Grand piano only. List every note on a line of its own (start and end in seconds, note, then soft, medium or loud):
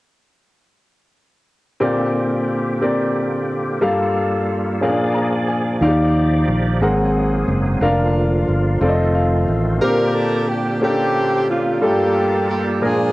1.80 2.77 A#2 medium
1.80 2.42 C4 medium
1.80 2.43 G4 medium
1.80 2.43 A#4 medium
1.80 2.43 D5 medium
2.81 3.43 C4 medium
2.81 3.43 G4 medium
2.81 3.43 A#4 soft
2.81 3.44 D5 medium
3.81 4.78 G2 medium
3.81 4.43 A#3 medium
3.81 4.43 G4 medium
3.81 4.43 A4 medium
3.81 4.44 F5 medium
4.81 5.78 A#2 medium
4.81 4.88 C#4 soft
4.81 5.44 G#4 medium
4.81 5.44 A#4 medium
4.81 5.44 F5 medium
4.88 5.47 D4 medium
5.14 5.46 A#5 soft
5.48 5.80 G#5 medium
5.81 6.78 D#3 medium
5.81 6.43 D#4 medium
5.81 5.88 F4 soft
5.81 6.44 D5 medium
5.81 6.44 F5 medium
5.87 6.46 G4 medium
6.82 7.78 G#2 medium
6.82 7.44 C4 medium
6.82 7.43 G#4 medium
6.82 7.44 A#4 medium
6.82 7.44 F#5 medium
7.81 8.43 D4 medium
7.81 8.44 F4 medium
7.81 8.44 A#4 medium
7.81 8.44 F5 medium
8.81 9.43 C4 medium
8.81 9.43 F4 medium
8.81 9.44 A4 medium
8.81 8.89 D5 medium
8.89 9.47 D#5 medium
9.15 9.78 F5 medium
9.81 10.78 A#2 soft
9.81 10.43 A#3 medium
9.81 9.88 C4 soft
9.81 10.43 G4 medium
9.81 10.44 C5 medium
9.88 10.46 D4 medium
10.81 11.43 A#3 medium
10.81 10.88 C#4 soft
10.81 11.44 G4 soft
10.81 11.44 A4 medium
10.88 11.47 D4 medium
11.81 12.77 G2 soft
11.81 12.43 G3 medium
11.81 11.88 A3 soft
11.81 12.43 F4 medium
11.81 12.44 A4 medium
11.88 12.46 A#3 medium
12.81 13.12 A#2 medium
12.81 13.12 G#3 medium
12.81 13.12 D4 soft
12.81 13.12 F4 soft
12.81 13.12 A#4 medium